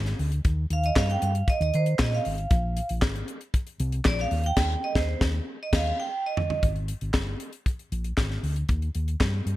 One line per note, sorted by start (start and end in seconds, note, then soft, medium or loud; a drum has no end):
0.00 0.13 G#1 loud
0.06 snare soft
0.06 closed hi-hat soft
0.19 0.38 D2 medium
0.19 open hi-hat medium
0.32 closed hi-hat soft
0.45 0.64 D#2 loud
0.45 kick loud
0.45 closed hi-hat medium
0.70 0.89 D#2 loud
0.70 0.85 F5 loud
0.70 closed hi-hat medium
0.83 0.98 D#5 medium
0.83 closed hi-hat soft
0.96 1.15 G2 medium
0.96 1.11 F5 loud
0.96 kick loud
0.96 snare loud
0.96 clap medium
1.10 1.16 G5 loud
1.10 closed hi-hat soft
1.22 1.41 G2 medium
1.22 1.50 F5 medium
1.22 closed hi-hat medium
1.35 closed hi-hat soft
1.48 1.61 D#5 loud
1.48 kick loud
1.48 closed hi-hat medium
1.60 1.70 D#2 medium
1.60 1.75 D#5 loud
1.60 closed hi-hat soft
1.74 1.93 D#3 loud
1.74 2.01 C5 medium
1.74 closed hi-hat medium
1.86 closed hi-hat soft
1.99 2.18 A#2 medium
1.99 2.13 D#5 medium
1.99 kick loud
1.99 snare loud
1.99 clap medium
2.12 2.87 F5 medium
2.12 snare soft
2.25 2.45 G#1 medium
2.25 open hi-hat medium
2.38 closed hi-hat soft
2.51 2.79 A#1 loud
2.51 kick loud
2.51 closed hi-hat medium
2.77 closed hi-hat medium
2.89 3.02 A#1 medium
2.89 closed hi-hat medium
3.02 3.21 G#1 loud
3.02 kick loud
3.02 snare loud
3.02 clap medium
3.16 closed hi-hat soft
3.28 closed hi-hat medium
3.41 closed hi-hat soft
3.54 kick loud
3.54 closed hi-hat medium
3.67 closed hi-hat soft
3.80 3.99 C2 loud
3.80 closed hi-hat medium
3.92 closed hi-hat soft
4.05 4.25 A#1 loud
4.05 4.20 D5 medium
4.05 kick loud
4.05 snare loud
4.05 clap medium
4.18 4.46 F5 medium
4.18 snare soft
4.31 4.50 D#2 loud
4.31 open hi-hat medium
4.44 4.85 G5 loud
4.44 closed hi-hat soft
4.56 4.74 D#2 loud
4.56 kick loud
4.56 snare loud
4.56 crash medium
4.84 4.97 D#5 medium
4.95 5.13 D#2 loud
4.95 5.20 C5 medium
4.95 kick loud
4.95 snare loud
5.21 5.39 D#2 loud
5.21 kick loud
5.21 snare loud
5.63 5.75 D#5 medium
5.73 5.90 D#2 loud
5.73 6.00 F5 loud
5.73 kick loud
5.73 snare loud
5.73 crash medium
6.00 6.23 G5 loud
6.26 6.62 D#5 medium
6.37 floor tom loud
6.50 floor tom medium
6.63 6.92 G#1 medium
6.63 kick medium
6.63 closed hi-hat medium
6.76 closed hi-hat soft
6.88 closed hi-hat medium
7.01 7.11 G#1 medium
7.01 closed hi-hat soft
7.14 7.33 G1 medium
7.14 kick loud
7.14 snare loud
7.14 clap medium
7.40 closed hi-hat medium
7.53 closed hi-hat soft
7.66 kick loud
7.66 closed hi-hat medium
7.79 closed hi-hat soft
7.92 8.11 A#1 medium
7.92 closed hi-hat medium
8.04 closed hi-hat soft
8.17 8.37 G#1 medium
8.17 kick medium
8.17 snare medium
8.17 clap medium
8.31 snare soft
8.43 8.62 D2 medium
8.43 open hi-hat medium
8.56 closed hi-hat soft
8.69 8.88 D#2 loud
8.69 kick medium
8.69 closed hi-hat medium
8.82 closed hi-hat soft
8.95 9.14 D#2 medium
8.95 closed hi-hat medium
9.08 closed hi-hat soft
9.20 9.40 G2 medium
9.20 kick loud
9.20 snare medium
9.20 clap medium
9.46 9.56 G2 medium
9.46 closed hi-hat medium